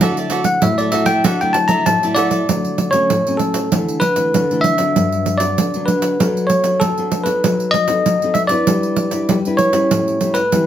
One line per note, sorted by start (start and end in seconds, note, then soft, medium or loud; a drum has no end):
0.01 0.60 D3 medium
0.01 0.58 F#3 medium
0.01 0.58 A3 soft
0.01 0.58 E4 medium
0.01 0.15 F#4 medium
0.01 0.16 A4 medium
0.01 0.16 D5 medium
0.01 0.16 E5 medium
0.01 pandeiro medium
0.17 0.30 A4 soft
0.17 0.30 D5 medium
0.17 0.31 E5 medium
0.17 pandeiro soft
0.30 0.44 F#4 medium
0.30 0.44 A4 medium
0.30 0.44 D5 medium
0.30 0.45 E5 medium
0.30 pandeiro medium
0.44 0.61 F#5 medium
0.44 muted cavaquinho stroke soft
0.44 pandeiro medium
0.62 1.22 A2 medium
0.62 0.89 F#3 medium
0.62 0.89 A3 medium
0.62 0.90 E4 medium
0.62 0.78 E5 medium
0.62 pandeiro medium
0.78 0.91 A4 soft
0.78 0.93 D5 medium
0.78 0.92 D5 soft
0.78 0.93 E5 soft
0.78 pandeiro soft
0.92 1.23 F#3 medium
0.92 1.23 A3 medium
0.92 1.23 E4 medium
0.92 1.07 F#4 medium
0.92 1.07 A4 medium
0.92 1.06 D5 soft
0.92 1.08 E5 medium
0.92 1.04 E5 medium
0.92 pandeiro medium
1.06 1.23 A4 medium
1.06 1.23 D5 medium
1.06 1.22 E5 medium
1.06 1.23 G5 loud
1.06 pandeiro medium
1.24 1.84 D3 medium
1.24 1.39 F#4 medium
1.24 1.39 A4 medium
1.24 1.40 D5 medium
1.24 1.40 E5 medium
1.24 1.40 F#5 medium
1.24 pandeiro medium
1.41 1.98 F#3 medium
1.41 1.98 A3 medium
1.41 1.98 E4 medium
1.41 1.54 A4 soft
1.41 1.55 D5 soft
1.41 1.55 E5 soft
1.41 1.56 G5 medium
1.41 pandeiro soft
1.53 1.70 A5 medium
1.53 muted cavaquinho stroke soft
1.53 pandeiro medium
1.68 2.01 A4 medium
1.68 2.01 D5 medium
1.68 2.00 E5 medium
1.68 1.85 A#5 loud
1.68 pandeiro medium
1.86 2.46 A2 medium
1.86 2.05 A5 medium
1.86 pandeiro medium
2.02 2.44 F#3 medium
2.02 2.44 A3 medium
2.02 2.45 E4 medium
2.02 2.15 A4 soft
2.02 2.16 D5 soft
2.02 2.17 E5 medium
2.02 pandeiro soft
2.15 2.31 F#4 medium
2.15 2.31 A4 medium
2.15 2.96 D5 loud
2.15 2.30 D5 medium
2.15 2.29 E5 medium
2.15 pandeiro medium
2.30 2.47 A4 soft
2.30 2.47 D5 soft
2.30 2.46 E5 soft
2.30 pandeiro medium
2.49 3.08 D3 medium
2.49 2.90 F#3 medium
2.49 2.91 A3 soft
2.49 pandeiro medium
2.65 pandeiro soft
2.78 pandeiro medium
2.91 3.20 F#3 medium
2.91 3.20 A3 medium
2.91 3.21 C#4 medium
2.91 3.36 C#5 loud
2.91 pandeiro medium
3.10 3.69 A2 medium
3.10 pandeiro medium
3.27 3.68 F#3 medium
3.27 3.68 A3 medium
3.27 3.68 C#4 medium
3.27 pandeiro soft
3.37 4.03 A4 medium
3.37 pandeiro medium
3.54 pandeiro medium
3.72 4.32 D3 medium
3.72 4.02 E3 medium
3.72 4.02 A3 soft
3.72 4.02 D4 medium
3.72 pandeiro medium
3.88 pandeiro soft
4.00 4.60 B4 loud
4.00 pandeiro medium
4.16 4.44 E3 medium
4.16 4.44 A3 medium
4.16 4.45 D4 medium
4.16 pandeiro medium
4.34 4.93 D3 medium
4.34 pandeiro medium
4.51 4.77 E3 medium
4.51 4.77 A3 medium
4.51 4.77 D4 medium
4.51 pandeiro soft
4.61 5.43 E5 loud
4.61 pandeiro medium
4.78 5.37 F#3 medium
4.78 5.37 B3 medium
4.78 5.37 D4 medium
4.78 pandeiro medium
4.96 5.55 G2 medium
4.96 pandeiro medium
5.12 pandeiro soft
5.26 pandeiro medium
5.38 5.68 F#3 soft
5.38 5.68 B3 medium
5.38 5.68 D4 medium
5.38 5.88 D5 loud
5.38 pandeiro medium
5.58 6.17 D3 medium
5.58 pandeiro medium
5.74 6.16 F#3 medium
5.74 6.16 B3 medium
5.74 6.16 D4 medium
5.74 pandeiro soft
5.86 6.45 B4 medium
5.86 pandeiro medium
6.02 pandeiro medium
6.20 6.79 F#3 medium
6.20 6.62 B3 medium
6.20 6.62 D4 medium
6.20 6.62 A4 medium
6.20 pandeiro medium
6.37 pandeiro soft
6.47 6.81 C#5 medium
6.47 pandeiro medium
6.64 6.91 B3 medium
6.64 6.91 D4 medium
6.64 6.92 A4 medium
6.64 pandeiro medium
6.80 7.41 F#3 medium
6.80 7.29 A4 medium
6.80 pandeiro medium
6.98 7.24 B3 medium
6.98 7.24 D4 medium
6.98 7.24 A4 medium
6.98 pandeiro soft
7.12 pandeiro medium
7.24 7.84 B3 medium
7.24 7.84 D#4 medium
7.24 7.85 A4 medium
7.24 7.74 B4 medium
7.24 pandeiro medium
7.44 8.03 F#3 medium
7.44 pandeiro medium
7.60 pandeiro soft
7.71 8.37 D#5 loud
7.71 pandeiro medium
7.88 8.15 B3 medium
7.88 8.16 D#4 medium
7.88 8.16 A4 medium
7.88 pandeiro medium
8.06 8.65 F#3 medium
8.06 pandeiro medium
8.22 8.48 B3 medium
8.22 8.48 D#4 medium
8.22 8.49 A4 medium
8.22 pandeiro soft
8.34 8.42 E5 medium
8.34 pandeiro medium
8.47 9.08 D4 medium
8.47 9.08 E4 medium
8.47 9.39 D5 loud
8.47 pandeiro medium
8.52 9.09 B4 medium
8.67 9.27 G3 medium
8.67 pandeiro medium
8.83 pandeiro soft
8.96 pandeiro medium
9.11 9.39 D4 medium
9.11 9.39 E4 medium
9.11 9.39 B4 medium
9.11 pandeiro medium
9.29 9.72 G3 medium
9.29 pandeiro medium
9.45 9.72 D4 medium
9.45 9.72 E4 medium
9.45 9.72 B4 medium
9.45 pandeiro soft
9.57 10.38 C#5 medium
9.57 pandeiro medium
9.73 10.20 G3 medium
9.73 10.20 C#4 medium
9.73 10.21 E4 medium
9.73 pandeiro medium
9.91 10.50 A2 medium
9.91 pandeiro medium
10.08 pandeiro soft
10.21 10.40 G3 medium
10.21 10.40 C#4 medium
10.21 10.40 E4 medium
10.21 pandeiro medium
10.34 10.66 B4 medium
10.34 pandeiro medium
10.52 10.66 E3 medium
10.52 10.66 G3 medium
10.52 10.66 C#4 soft
10.52 10.66 E4 medium
10.52 pandeiro medium